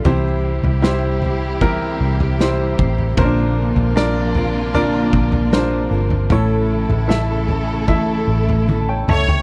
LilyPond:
<<
  \new Staff \with { instrumentName = "Violin section" } { \time 4/4 \key bes \lydian \tempo 4 = 77 r1 | r1 | r2. r8 cis''8 | }
  \new Staff \with { instrumentName = "Grand piano" } { \time 4/4 \key bes \lydian <e' g' c''>4 <e' g' c''>4 <e' g' bes'>4 <e' g' c''>4 | <cis' d' bes' c''>4 <d' bes' d''>4 <d' bes' d''>4 <d' bes' c''>4 | <e' a' cis''>4 <e' a' e''>4 <e' a' e''>4 r16 <cis'' g''>16 <e'' a''>16 <g'' cis'''>16 | }
  \new Staff \with { instrumentName = "Grand piano" } { \clef bass \time 4/4 \key bes \lydian c4. r2 r8 | bes,4. r2 r8 | a,4. r2 r8 | }
  \new Staff \with { instrumentName = "Steel-string acoustic guitar" } { \time 4/4 \key bes \lydian <c e g c' e' c''>4 <g c' e' c''>8 <g c' e' c''>8 <c e g c' e' c''>4 <g c' e' c''>8 <g c' e' c''>8 | <bes, d bes c' f' bes'>4 <bes c' f' bes'>8 <bes c' f' bes'>8 <bes, d bes c' f' bes'>4 <bes c' f' bes'>8 <bes c' f' bes'>8 | <a, e a cis' e' a'>4 <a cis' e' a'>8 <a cis' e' a'>8 <a, e a cis' e' a'>4 <a cis' e' a'>8 <a cis' e' a'>8 | }
  \new Staff \with { instrumentName = "String section" } { \time 4/4 \key bes \lydian << { <e g e' g'>1 | <f bes d' f'>1 | <e a e' a'>1 | } \\ { c1~ | c1 | cis1 | } >> }
  \new Staff \with { instrumentName = "Fingered electric bass" } { \clef bass \time 4/4 \key bes \lydian c,8. c,4.~ c,16 c,4 a,,8 | bes,,8. bes,,4.~ bes,,16 bes,,4 g,,8 | a,,8. a,,4.~ a,,16 a,,4 cis,8 | }
  \new DrumStaff \with { instrumentName = "Drums" } \drummode { \time 4/4 tomfh8. tomfh16 sn8 tomfh8 <bd tomfh>8. tomfh16 sn8 <bd tomfh>16 tomfh16 | <bd tomfh>8. tomfh16 sn8 tomfh8 tomfh8 bd16 tomfh16 sn8. tomfh16 | tomfh8. tomfh16 sn8 tomfh8 <bd tomfh>8. tomfh16 tommh8 toml16 tomfh16 | }
>>